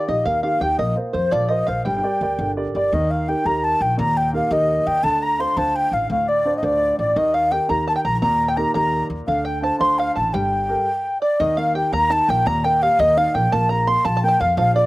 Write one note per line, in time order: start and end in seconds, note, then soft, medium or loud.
0.07 0.22 A#1 medium
0.07 0.37 D#4 soft
0.07 0.37 F4 soft
0.07 0.37 G4 soft
0.07 0.24 D#5 medium
0.07 0.28 D#5 medium
0.07 0.25 D#5 medium
0.25 0.53 D#2 medium
0.25 0.60 A#3 medium
0.25 0.41 F5 medium
0.25 0.42 F5 medium
0.25 0.44 F5 medium
0.42 0.59 D#4 soft
0.42 0.59 F4 soft
0.42 0.60 G4 medium
0.42 0.61 F5 medium
0.42 0.60 F5 medium
0.42 0.64 F5 medium
0.60 0.75 D#2 medium
0.60 0.75 D#4 soft
0.60 0.75 F4 soft
0.60 0.75 G4 medium
0.60 0.77 G5 medium
0.60 0.78 G5 medium
0.60 0.79 G5 medium
0.77 0.92 A#1 medium
0.77 1.13 A#3 medium
0.77 0.95 D#5 medium
0.77 0.96 D#5 medium
0.96 1.12 F4 soft
0.96 1.12 A#4 soft
0.96 1.13 C5 medium
1.13 1.28 F2 medium
1.13 1.42 F4 soft
1.13 1.42 A#4 soft
1.13 1.30 C5 medium
1.13 1.32 C5 medium
1.13 1.43 C5 soft
1.13 1.34 C5 medium
1.31 1.60 A#1 loud
1.31 1.66 F3 medium
1.31 1.48 D5 medium
1.31 1.50 D5 medium
1.31 1.52 D5 medium
1.49 1.66 F4 soft
1.49 1.66 A#4 soft
1.49 1.66 C5 medium
1.49 1.66 D#5 medium
1.49 1.68 D#5 medium
1.49 1.70 D#5 medium
1.67 1.81 A#1 medium
1.67 1.82 F4 soft
1.67 1.82 A#4 soft
1.67 1.82 C5 medium
1.67 1.84 F5 medium
1.67 1.86 F5 medium
1.84 1.99 G1 medium
1.84 2.19 G3 medium
1.84 2.52 G5 medium
1.84 2.53 G5 medium
2.03 2.20 G4 soft
2.03 2.20 A#4 soft
2.03 2.21 D5 medium
2.21 2.35 D2 medium
2.21 2.49 G4 soft
2.21 2.50 A#4 soft
2.21 2.50 D5 medium
2.39 2.66 G1 medium
2.39 2.73 D3 medium
2.57 2.73 G4 medium
2.57 2.74 A#4 soft
2.57 2.75 D5 medium
2.74 2.88 G1 medium
2.74 2.89 G4 soft
2.74 2.89 A#4 soft
2.74 2.91 D5 medium
2.74 2.89 D5 medium
2.74 2.95 D5 medium
2.93 3.33 D#2 medium
2.93 3.95 D#3 medium
2.93 3.10 D#5 medium
2.93 3.12 D#5 medium
3.10 3.28 F5 medium
3.10 3.30 F5 medium
3.28 3.43 D#4 soft
3.28 3.44 G4 soft
3.28 3.45 A#4 soft
3.28 3.46 G5 medium
3.28 3.48 G5 medium
3.45 3.73 D#2 medium
3.45 3.79 D#4 medium
3.45 3.79 G4 soft
3.45 3.80 A#4 medium
3.45 3.63 A#5 medium
3.45 3.66 A#5 medium
3.63 3.81 A5 medium
3.63 3.83 A5 loud
3.81 3.94 A#1 medium
3.81 3.97 G5 medium
3.81 3.99 G5 medium
3.97 4.39 D#2 loud
3.97 5.00 A#2 medium
3.97 4.16 A#5 medium
3.97 4.19 A#5 loud
4.17 4.34 G5 medium
4.17 4.33 G5 medium
4.33 4.49 D#4 soft
4.33 4.49 G4 soft
4.33 4.50 A#4 soft
4.33 4.43 F5 medium
4.33 4.54 F5 medium
4.46 4.52 F5 medium
4.51 4.78 D#2 loud
4.51 4.85 D#4 medium
4.51 4.85 G4 soft
4.51 4.85 A#4 medium
4.51 5.01 D#5 medium
4.51 4.88 D#5 medium
4.87 5.00 D#2 medium
4.87 5.05 G5 loud
5.03 5.45 D2 medium
5.03 6.06 D3 medium
5.03 5.24 A5 loud
5.03 5.22 A5 medium
5.22 5.40 A#5 medium
5.22 5.42 A#5 loud
5.39 5.55 D4 soft
5.39 5.56 F4 soft
5.39 5.56 C5 medium
5.39 5.58 C6 medium
5.39 5.59 C6 loud
5.56 5.84 D2 loud
5.56 5.91 D4 medium
5.56 5.91 F4 soft
5.56 5.92 C5 medium
5.56 5.77 A5 loud
5.56 5.74 A5 loud
5.75 5.93 G5 medium
5.75 5.95 G5 loud
5.92 6.05 A1 medium
5.92 6.09 F5 medium
5.92 6.11 F5 medium
6.10 6.51 D2 medium
6.10 7.13 A2 medium
6.10 6.27 F5 medium
6.10 6.30 F5 medium
6.28 6.57 D5 medium
6.28 6.56 D5 medium
6.45 6.61 D4 soft
6.45 6.61 F4 soft
6.45 6.61 C5 soft
6.57 6.66 D#5 medium
6.57 6.63 D#5 medium
6.62 6.90 D2 medium
6.62 6.97 D4 medium
6.62 6.97 F4 soft
6.62 6.97 C5 medium
6.62 6.96 D5 medium
6.62 6.99 D5 medium
6.99 7.12 A1 medium
6.99 7.17 D5 medium
6.99 7.19 D5 medium
7.16 7.57 D#2 medium
7.16 8.19 D#3 medium
7.16 7.33 D#5 medium
7.16 7.36 D#5 medium
7.16 7.35 D#5 medium
7.34 7.50 F5 medium
7.34 7.53 F5 medium
7.34 7.51 F5 medium
7.52 7.67 D#4 soft
7.52 7.67 G4 soft
7.52 7.68 A#4 soft
7.52 7.59 G5 medium
7.52 7.71 G5 loud
7.52 7.69 G5 medium
7.69 7.97 D#2 medium
7.69 8.03 D#4 medium
7.69 8.03 G4 soft
7.69 8.03 A#4 medium
7.69 7.87 A#5 medium
7.69 7.88 A#5 medium
7.88 7.95 A5 medium
7.88 7.95 A5 loud
7.88 7.96 A5 medium
7.96 8.04 G5 medium
7.96 8.06 G5 medium
8.04 8.18 A#1 medium
8.04 8.21 A#5 loud
8.04 8.21 A#5 medium
8.04 8.22 A#5 medium
8.22 8.63 D#2 medium
8.22 9.25 A#2 medium
8.22 8.50 A#5 loud
8.22 8.47 A#5 medium
8.22 8.50 A#5 medium
8.48 8.57 G5 medium
8.48 8.58 G5 medium
8.57 8.73 D#4 medium
8.57 8.73 G4 soft
8.57 8.73 A#4 soft
8.57 8.75 A#5 medium
8.57 8.72 A#5 medium
8.57 8.73 A#5 medium
8.74 9.02 D#2 loud
8.74 9.09 D#4 medium
8.74 9.09 G4 soft
8.74 9.09 A#4 medium
8.74 9.07 A#5 medium
8.74 9.08 A#5 medium
8.74 9.04 A#5 medium
9.10 9.24 D#2 medium
9.27 9.69 D2 medium
9.27 10.31 D3 medium
9.27 9.44 F5 medium
9.27 9.47 F5 medium
9.27 9.45 F5 medium
9.45 9.63 G5 medium
9.45 9.64 G5 medium
9.45 9.62 G5 medium
9.62 9.78 D4 soft
9.62 9.78 F4 soft
9.62 9.79 C5 medium
9.62 9.79 A5 loud
9.62 9.81 A5 medium
9.62 9.80 A5 medium
9.79 10.08 D2 loud
9.79 10.14 D4 medium
9.79 10.15 F4 soft
9.79 10.15 C5 medium
9.79 10.00 C6 medium
9.79 9.99 C6 medium
9.79 9.97 C6 loud
9.98 10.17 F5 medium
9.98 10.15 F5 medium
9.98 10.16 F5 medium
10.16 10.30 A1 medium
10.16 10.32 A5 medium
10.16 10.33 A5 medium
10.16 10.35 A5 medium
10.33 10.75 G1 loud
10.33 10.85 G3 medium
10.33 11.18 G5 medium
10.33 11.21 G5 medium
10.33 11.19 G5 medium
10.68 10.86 G4 soft
10.68 10.86 A4 soft
10.68 10.87 A#4 medium
11.22 11.38 D5 medium
11.22 11.39 D5 medium
11.22 11.42 D5 medium
11.40 11.81 D#2 medium
11.40 12.43 D#3 medium
11.40 11.56 D#5 medium
11.40 11.60 D#5 loud
11.40 11.57 D#5 medium
11.57 11.75 A#3 medium
11.57 11.74 F5 medium
11.57 11.76 F5 medium
11.74 11.92 G4 medium
11.74 11.91 G5 medium
11.74 11.92 G5 medium
11.92 12.20 D#2 medium
11.92 12.10 A#3 medium
11.92 12.11 A#5 medium
11.92 12.10 A#5 loud
11.92 12.14 A#5 loud
12.09 12.27 D#4 medium
12.09 12.28 A5 loud
12.09 12.27 A5 medium
12.09 12.31 A5 loud
12.28 12.42 A#1 medium
12.28 12.46 A#3 medium
12.28 12.46 G5 medium
12.28 12.49 G5 loud
12.28 12.46 G5 medium
12.46 12.87 D#2 loud
12.46 13.49 A#2 medium
12.46 12.64 A#5 medium
12.46 12.63 A#5 medium
12.46 12.66 A#5 loud
12.64 12.81 A#3 medium
12.64 12.82 G5 medium
12.64 12.81 G5 medium
12.64 12.84 G5 loud
12.82 12.99 G4 medium
12.82 13.01 F5 loud
12.82 13.00 F5 medium
12.82 12.99 F5 medium
12.99 13.26 D#2 loud
12.99 13.17 A#3 medium
12.99 13.17 D#5 medium
12.99 13.18 D#5 medium
12.99 13.19 D#5 medium
13.17 13.34 D#4 medium
13.17 13.35 F5 medium
13.17 13.34 F5 medium
13.17 13.36 F5 loud
13.34 13.48 A#1 medium
13.34 13.51 A#3 medium
13.34 13.54 G5 loud
13.34 13.53 G5 medium
13.34 13.51 G5 medium
13.52 13.93 A#1 medium
13.52 13.86 A#3 medium
13.52 13.68 A5 medium
13.52 13.69 A5 medium
13.52 13.72 A5 loud
13.69 13.87 F4 medium
13.69 13.86 A#5 medium
13.69 13.88 A#5 medium
13.69 13.89 A#5 loud
13.87 14.04 A#3 soft
13.87 14.04 C6 medium
13.87 14.07 C6 loud
14.05 14.32 A#1 loud
14.05 14.22 F4 medium
14.05 14.16 A5 loud
14.05 14.23 A5 loud
14.05 14.24 A5 medium
14.17 14.27 A5 medium
14.23 14.40 A#3 medium
14.23 14.42 G5 loud
14.23 14.40 G5 medium
14.28 14.41 A5 medium
14.40 14.54 F2 medium
14.40 14.57 F4 medium
14.40 14.58 F5 loud
14.40 14.57 F5 medium
14.57 14.86 A#1 loud
14.57 14.86 F3 medium
14.57 14.74 F5 medium
14.57 14.77 F5 medium
14.57 14.75 F5 loud
14.75 14.86 F4 medium
14.75 14.86 D5 medium